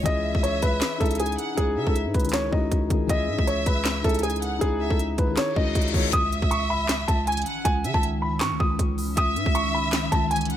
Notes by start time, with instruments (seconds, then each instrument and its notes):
0.03 808-style bass C#2, felt piano E3 C#4 E4, grand piano D#5, violin section E5, kick, closed hi-hat
0.08 felt piano G#4
0.35 808-style bass C#2, kick
0.43 grand piano C#5, closed hi-hat
0.62 808-style bass C#2, grand piano B4, kick, closed hi-hat
0.82 snare, clap, closed hi-hat
0.98 808-style bass C#2, felt piano C#4 D#4 E4, grand piano A4, kick, closed hi-hat
1.03 felt piano G#4, closed hi-hat
1.11 closed hi-hat
1.15 closed hi-hat
1.19 grand piano G#4, violin section G#5, closed hi-hat
1.26 closed hi-hat
1.32 closed hi-hat
1.38 violin section F#5, closed hi-hat
1.55 808-style bass C#2, felt piano C#4 D#4 E4, grand piano G#4, kick, closed hi-hat
1.60 felt piano G#4
1.76 808-style bass C#3, violin section E5
1.87 808-style bass C#2, grand piano A4, kick
1.96 closed hi-hat
2.06 808-style bass G#2
2.14 808-style bass C#2, grand piano B4, kick, closed hi-hat, open hi-hat
2.20 felt piano D#3 C#4, closed hi-hat
2.25 felt piano E4 G#4, closed hi-hat
2.29 closed hi-hat
2.33 grand piano C#5, snare, clap, closed hi-hat
2.51 808-style bass C#2, felt piano C#4 D#4 E4, grand piano D#5, kick
2.55 felt piano F#4
2.72 808-style bass C#2, kick, closed hi-hat
2.88 808-style bass C#2, felt piano D#3 C#4 E4, kick, closed hi-hat
2.93 felt piano G#4
3.07 808-style bass C#2, felt piano E3 C#4 E4, grand piano D#5, violin section E5, kick, closed hi-hat
3.12 felt piano G#4
3.28 808-style bass G#2
3.39 808-style bass C#2, kick
3.47 grand piano C#5, closed hi-hat
3.66 808-style bass C#2, grand piano B4, kick, closed hi-hat
3.85 snare, clap, closed hi-hat
4.02 808-style bass C#2, felt piano C#4 D#4 E4, grand piano A4, kick, closed hi-hat
4.07 felt piano G#4, closed hi-hat
4.14 closed hi-hat
4.19 closed hi-hat
4.23 grand piano G#4, violin section G#5, closed hi-hat
4.30 closed hi-hat
4.36 closed hi-hat
4.42 violin section F#5, closed hi-hat
4.59 808-style bass C#2, felt piano C#4 D#4 E4, grand piano G#4, kick, closed hi-hat
4.64 felt piano G#4
4.80 violin section E5
4.90 808-style bass C#2, grand piano A4, kick
4.99 closed hi-hat
5.18 808-style bass C#2, grand piano B4, kick, closed hi-hat
5.26 felt piano D#3 C#4 E4
5.31 felt piano G#4
5.37 grand piano C#5, snare, clap, closed hi-hat, reverse cymbal
5.54 808-style bass C#2, felt piano C#4 D#4 E4, grand piano D#5, violin section D#5, kick
5.58 felt piano F#4
5.75 808-style bass C#2, kick, closed hi-hat
5.82 closed hi-hat
5.88 closed hi-hat
5.92 808-style bass C#2, felt piano D#3 C#4 E4, violin section C#5, kick, open hi-hat
5.97 felt piano G#4
6.13 808-style bass C#2, ambient pad D#3 E3 C#4, violin section E5, grand piano D#6, kick, closed hi-hat, impact
6.33 closed hi-hat
6.42 808-style bass C#2, kick
6.51 grand piano C#6, closed hi-hat
6.70 grand piano B5
6.89 snare, clap, closed hi-hat
7.08 808-style bass C#2, grand piano A5, kick, closed hi-hat
7.27 violin section G#5, grand piano G#5, closed hi-hat
7.32 closed hi-hat
7.37 closed hi-hat
7.42 closed hi-hat
7.46 violin section F#5, closed hi-hat
7.65 808-style bass C#2, grand piano G#5, kick, closed hi-hat
7.84 808-style bass C#3, violin section E5, closed hi-hat
7.94 808-style bass C#2, grand piano A5, kick
8.03 closed hi-hat
8.22 grand piano B5
8.41 808-style bass G#2, grand piano C#6, snare, clap, closed hi-hat
8.51 808-style bass C#2
8.60 808-style bass C#2, grand piano D#6, kick
8.79 808-style bass C#2, kick, closed hi-hat
8.98 open hi-hat
9.17 808-style bass C#2, ambient pad D#3, violin section E5, grand piano D#6, kick, closed hi-hat
9.36 808-style bass G#2, closed hi-hat
9.46 808-style bass C#2, kick
9.55 grand piano C#6, closed hi-hat
9.74 grand piano B5
9.93 snare, clap, closed hi-hat
10.12 808-style bass C#2, grand piano A5, kick, closed hi-hat
10.31 grand piano G#5, violin section G#5, closed hi-hat
10.36 closed hi-hat
10.41 closed hi-hat
10.45 closed hi-hat
10.50 violin section F#5, closed hi-hat